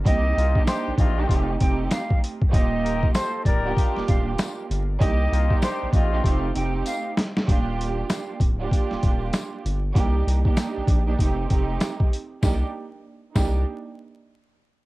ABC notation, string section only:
X:1
M:4/4
L:1/16
Q:"Swing 16ths" 1/4=97
K:Cdor
V:1 name="String section"
[B,CEG]3 [B,DEG]4 [B,DEG] [A,CEG]2 [A,CEG]4 z2 | [B,EFG]6 z [B,DFG]6- [B,DFG] z2 | [B,CEG]3 [B,DEG]4 [B,DEG] [A,CEG]2 [A,CEG]4 z2 | [B,DFG]6 z [B,DFG]6- [B,DFG] z2 |
[B,DEG]3 [B,DEG]4 [B,DEG] [A,CEG]2 [A,CEG]4 z2 | [B,DEG] z4 z [B,DEG]2 z8 |]